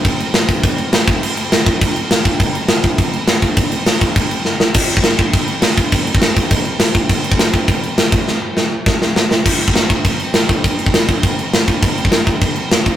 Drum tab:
CC |x-x-x-x-x-x-x-x-|x-x-x-x-x-x-x-x-|x-x-x-x-x-x-x-x-|x-x-x-x-x-x-----|
SD |----o-------o---|----o-------o---|----o-------o---|----o-------o-o-|
BD |o-----o-o-----o-|------o-o-----o-|o-----o-o-----o-|o-----o-o-------|

CC |x-x-x-x-x-x-x-x-|x-x-x-x-x-x-x-x-|x-x-x-x-x-x-x-x-|----------------|
SD |----o-------o---|----o-------o---|----o-------o---|o---o---o-o-o-o-|
BD |o--o--o-o-----o-|o--o--o-o-----o-|o--o--o-o-----o-|--------o-------|

CC |x-x-x-x-x-x-x-x-|x-x-x-x-x-x-x-x-|x-x-x-x-x-x-x-x-|
SD |----o-------o---|----o-------o---|----o-------o---|
BD |o--o--o-o-----o-|o--o--o-o-----o-|o--o--o-o-----o-|